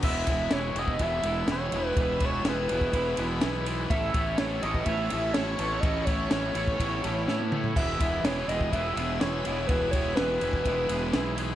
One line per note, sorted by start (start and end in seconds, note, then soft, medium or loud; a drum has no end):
0.02 0.26 E1 loud
0.02 0.27 E3 loud
0.02 0.27 G#3 loud
0.02 0.28 B3 loud
0.02 0.28 E4 loud
0.02 7.74 B4 medium
0.02 0.53 E5 loud
0.02 3.87 G#5 medium
0.02 3.88 E6 medium
0.02 kick loud
0.02 crash loud
0.27 0.50 E1 medium
0.27 0.51 E3 medium
0.27 0.52 G#3 medium
0.27 0.52 B3 medium
0.27 0.53 E4 medium
0.27 kick medium
0.27 ride medium
0.51 0.74 E1 medium
0.51 0.76 E3 medium
0.51 0.77 G#3 medium
0.51 0.78 B3 loud
0.51 0.78 E4 medium
0.51 0.80 C#5 loud
0.51 snare loud
0.51 ride loud
0.75 0.98 E1 loud
0.75 1.01 E3 medium
0.75 1.00 G#3 medium
0.75 1.02 B3 medium
0.75 1.02 E4 loud
0.75 1.03 D#5 loud
0.75 ride medium
0.88 kick medium
0.99 1.22 E1 medium
0.99 1.25 E3 medium
0.99 1.24 G#3 loud
0.99 1.25 B3 loud
0.99 1.26 E4 medium
0.99 1.50 E5 loud
0.99 kick medium
0.99 ride loud
1.23 1.46 E1 medium
1.23 1.48 E3 medium
1.23 1.48 G#3 medium
1.23 1.49 B3 medium
1.23 1.50 E4 medium
1.23 ride medium
1.47 1.70 E1 medium
1.47 1.74 E3 medium
1.47 1.73 G#3 medium
1.47 1.74 B3 medium
1.47 1.75 E4 medium
1.47 snare loud
1.47 ride medium
1.52 1.88 C#5 medium
1.72 1.95 E1 medium
1.72 1.96 E3 medium
1.72 1.97 G#3 medium
1.72 1.97 B3 medium
1.72 1.99 E4 medium
1.72 ride medium
1.88 2.01 B4 medium
1.97 2.41 E1 medium
1.97 2.22 E3 medium
1.97 2.22 G#3 loud
1.97 2.23 B3 loud
1.97 2.23 E4 loud
1.97 kick loud
1.97 ride medium
2.01 2.27 B4 medium
2.20 2.46 E3 medium
2.20 2.45 G#3 medium
2.20 2.46 B3 loud
2.20 2.47 E4 medium
2.20 kick medium
2.20 ride medium
2.25 2.48 C#5 medium
2.45 2.67 E1 medium
2.45 2.70 E3 medium
2.45 2.70 G#3 medium
2.45 2.71 B3 medium
2.45 2.71 E4 medium
2.45 snare loud
2.45 ride loud
2.49 3.64 B4 medium
2.69 2.93 E1 medium
2.69 2.93 E3 medium
2.69 2.92 G#3 medium
2.69 2.93 B3 medium
2.69 2.94 E4 loud
2.69 ride medium
2.81 kick medium
2.93 3.16 E1 loud
2.93 3.18 E3 loud
2.93 3.17 G#3 loud
2.93 3.18 B3 loud
2.93 3.19 E4 loud
2.93 kick loud
2.93 ride loud
3.17 3.40 E1 loud
3.17 3.43 E3 medium
3.17 3.42 G#3 medium
3.17 3.43 B3 medium
3.17 3.44 E4 medium
3.17 ride medium
3.41 3.87 B1 medium
3.41 3.66 E3 medium
3.41 3.66 G#3 medium
3.41 3.67 B3 medium
3.41 3.68 E4 medium
3.41 snare loud
3.41 ride loud
3.66 3.90 E3 medium
3.66 3.90 G#3 loud
3.66 3.91 B3 medium
3.66 3.91 E4 medium
3.66 ride medium
3.89 4.13 A1 loud
3.89 4.14 A2 loud
3.89 4.14 E3 loud
3.89 4.15 A3 loud
3.89 4.16 B3 medium
3.89 4.16 C#4 medium
3.89 4.16 E4 loud
3.89 4.16 A4 medium
3.89 4.17 C#5 medium
3.89 4.39 E5 loud
3.89 5.82 A5 medium
3.89 7.74 C#6 medium
3.89 kick loud
3.89 ride loud
4.14 4.37 A1 medium
4.14 4.38 A2 medium
4.14 4.39 E3 medium
4.14 4.39 A3 medium
4.14 4.39 B3 medium
4.14 4.40 C#4 loud
4.14 4.39 E4 medium
4.14 4.40 A4 loud
4.14 4.40 C#5 medium
4.14 kick medium
4.14 ride medium
4.38 4.62 A1 medium
4.38 4.63 A2 loud
4.38 4.63 E3 medium
4.38 4.63 A3 medium
4.38 4.64 B3 medium
4.38 4.64 C#4 medium
4.38 4.64 E4 medium
4.38 4.64 A4 medium
4.38 4.62 C#5 loud
4.38 4.65 C#5 medium
4.38 snare loud
4.38 ride loud
4.62 4.85 A1 medium
4.62 4.86 A2 medium
4.62 4.87 E3 medium
4.62 4.86 A3 loud
4.62 4.88 B3 medium
4.62 4.88 C#4 medium
4.62 4.88 E4 medium
4.62 4.88 A4 medium
4.62 4.88 C#5 medium
4.62 4.86 D#5 loud
4.62 ride medium
4.75 kick medium
4.85 5.09 A1 loud
4.85 5.10 A2 loud
4.85 5.11 E3 loud
4.85 5.09 A3 loud
4.85 5.11 B3 loud
4.85 5.11 E4 loud
4.85 5.35 E5 loud
4.85 kick loud
4.85 ride loud
4.89 5.11 C#4 loud
4.89 5.11 A4 loud
4.89 5.12 C#5 loud
5.10 5.34 A1 medium
5.10 5.33 A2 medium
5.10 5.34 E3 medium
5.10 5.35 A3 medium
5.10 5.36 B3 medium
5.10 5.35 C#4 medium
5.10 5.37 E4 medium
5.10 5.36 A4 medium
5.10 5.37 C#5 loud
5.10 ride medium
5.33 5.58 A1 medium
5.33 5.56 A2 medium
5.33 5.58 E3 medium
5.33 5.59 A3 medium
5.33 5.60 B3 medium
5.33 5.59 C#4 medium
5.33 5.61 E4 medium
5.33 5.82 C#5 medium
5.33 snare loud
5.33 ride medium
5.37 5.61 A4 loud
5.37 5.61 C#5 loud
5.58 5.81 A1 medium
5.58 5.82 A2 medium
5.58 5.83 E3 medium
5.58 5.82 A3 medium
5.58 5.83 B3 medium
5.58 5.84 C#4 loud
5.58 5.84 E4 medium
5.58 ride medium
5.62 5.83 A4 medium
5.62 5.83 C#5 medium
5.80 6.28 A1 medium
5.80 6.05 A2 medium
5.80 6.07 E3 medium
5.80 6.06 A3 loud
5.80 6.08 B3 loud
5.80 6.08 E4 loud
5.80 6.06 D#5 loud
5.80 7.74 B5 medium
5.80 kick loud
5.80 ride medium
5.84 6.07 C#4 loud
5.84 6.08 A4 loud
5.84 6.08 C#5 loud
6.05 6.29 A2 medium
6.05 6.31 E3 medium
6.05 6.32 A3 medium
6.05 6.33 B3 medium
6.05 6.31 C#4 medium
6.05 6.34 E4 medium
6.05 6.29 C#5 medium
6.05 kick medium
6.05 ride medium
6.09 6.33 A4 medium
6.09 6.33 C#5 medium
6.30 6.54 A1 medium
6.30 6.54 A2 medium
6.30 6.56 E3 medium
6.30 6.54 A3 medium
6.30 6.55 B3 medium
6.30 6.56 C#4 medium
6.30 7.48 C#5 medium
6.30 snare loud
6.30 ride loud
6.34 6.56 E4 medium
6.34 6.55 A4 medium
6.34 6.56 C#5 medium
6.55 6.78 A1 medium
6.55 6.77 A2 medium
6.55 6.79 E3 medium
6.55 6.79 A3 medium
6.55 6.81 B3 medium
6.55 6.79 C#4 medium
6.55 6.81 E4 medium
6.55 6.81 A4 loud
6.55 6.81 C#5 medium
6.55 ride medium
6.68 kick medium
6.79 7.02 A1 medium
6.79 7.02 A2 medium
6.79 7.03 E3 medium
6.79 7.04 A3 loud
6.79 7.06 B3 loud
6.79 7.04 C#4 loud
6.79 7.06 E4 loud
6.79 7.06 A4 loud
6.79 7.06 C#5 loud
6.79 kick medium
6.79 ride loud
7.03 7.27 A1 medium
7.03 7.26 A2 medium
7.03 7.28 E3 medium
7.03 7.26 A3 medium
7.03 7.28 B3 medium
7.03 7.28 C#4 medium
7.03 7.28 E4 medium
7.03 7.28 A4 medium
7.03 7.28 C#5 medium
7.03 ride medium
7.27 7.50 A2 medium
7.27 7.73 A2 medium
7.27 7.52 E3 medium
7.27 7.52 A3 medium
7.27 7.53 B3 medium
7.27 7.52 C#4 medium
7.27 7.54 E4 medium
7.27 7.54 A4 medium
7.27 7.54 C#5 medium
7.27 snare medium
7.40 high tom medium
7.52 7.75 A2 medium
7.52 7.76 E3 medium
7.52 7.76 A3 medium
7.52 7.77 B3 medium
7.52 7.76 C#4 medium
7.52 7.77 E4 medium
7.52 7.77 A4 medium
7.52 7.77 C#5 medium
7.52 mid tom medium
7.64 floor tom medium
7.76 7.99 E1 loud
7.76 8.00 E3 medium
7.76 8.01 G#3 loud
7.76 8.01 B3 loud
7.76 8.02 E4 loud
7.76 8.02 G#4 loud
7.76 11.55 B4 medium
7.76 8.26 E5 loud
7.76 11.55 G#5 medium
7.76 11.55 E6 medium
7.76 kick loud
7.76 crash medium
8.00 8.23 E1 medium
8.00 8.24 E3 medium
8.00 8.26 G#3 medium
8.00 8.25 B3 medium
8.00 8.26 E4 loud
8.00 8.27 G#4 loud
8.00 kick medium
8.00 ride medium
8.24 8.46 E1 medium
8.24 8.49 E3 medium
8.24 8.49 G#3 medium
8.24 8.50 B3 medium
8.24 8.50 E4 medium
8.24 8.51 G#4 medium
8.24 8.49 C#5 loud
8.24 snare loud
8.24 ride loud
8.48 8.71 E1 medium
8.48 8.74 E3 medium
8.48 8.73 G#3 medium
8.48 8.75 B3 medium
8.48 8.75 E4 medium
8.48 8.74 G#4 medium
8.48 8.74 D#5 loud
8.48 ride medium
8.61 kick medium
8.72 8.95 E1 medium
8.72 8.97 E3 loud
8.72 8.97 G#3 loud
8.72 8.98 B3 loud
8.72 8.99 E4 loud
8.72 8.98 G#4 loud
8.72 9.21 E5 loud
8.72 kick medium
8.72 ride loud
8.96 9.19 E1 medium
8.96 9.21 E3 medium
8.96 9.21 G#3 medium
8.96 9.22 B3 medium
8.96 9.22 E4 loud
8.96 9.22 G#4 medium
8.96 ride medium
9.20 9.44 E1 medium
9.20 9.45 E3 medium
9.20 9.45 G#3 medium
9.20 9.46 B3 medium
9.20 9.46 E4 medium
9.20 9.45 G#4 medium
9.20 9.68 C#5 medium
9.20 snare loud
9.20 ride medium
9.45 9.68 E1 medium
9.45 9.69 E3 medium
9.45 9.68 G#3 medium
9.45 9.69 B3 medium
9.45 9.70 E4 medium
9.45 9.69 G#4 loud
9.45 ride medium
9.67 10.14 E1 loud
9.67 9.94 E3 loud
9.67 9.94 G#3 medium
9.67 9.95 B3 loud
9.67 9.96 E4 loud
9.67 9.95 G#4 loud
9.67 9.91 B4 medium
9.67 kick loud
9.67 ride medium
9.91 10.18 E3 medium
9.91 10.18 G#3 medium
9.91 10.15 C#5 medium
9.91 kick medium
9.91 ride medium
9.96 10.19 B3 medium
9.96 10.20 E4 medium
9.96 10.19 G#4 loud
10.15 10.40 E1 medium
10.15 10.42 E3 medium
10.15 10.42 G#3 medium
10.15 11.32 B4 medium
10.15 snare loud
10.15 ride medium
10.20 10.43 B3 loud
10.20 10.43 E4 medium
10.20 10.43 G#4 loud
10.41 10.64 E1 loud
10.41 10.66 E3 medium
10.41 10.66 G#3 medium
10.41 10.68 B3 medium
10.41 10.67 E4 medium
10.41 10.67 G#4 loud
10.41 ride medium
10.53 kick medium
10.65 10.88 E1 loud
10.65 10.89 E3 medium
10.65 10.90 G#3 loud
10.65 10.91 B3 loud
10.65 10.90 E4 loud
10.65 10.91 G#4 loud
10.65 kick medium
10.65 ride medium
10.89 11.11 E1 medium
10.89 11.13 E3 medium
10.89 11.13 G#3 medium
10.89 11.14 B3 medium
10.89 11.14 E4 medium
10.89 11.15 G#4 medium
10.89 ride medium
11.13 11.55 B1 loud
11.13 11.36 E3 medium
11.13 11.36 G#3 medium
11.13 11.37 B3 medium
11.13 11.37 E4 medium
11.13 11.38 G#4 medium
11.13 snare loud
11.13 ride loud
11.37 11.55 E3 medium
11.37 11.55 G#3 medium
11.37 11.55 B3 medium
11.37 11.55 E4 medium
11.37 11.55 G#4 medium
11.37 ride medium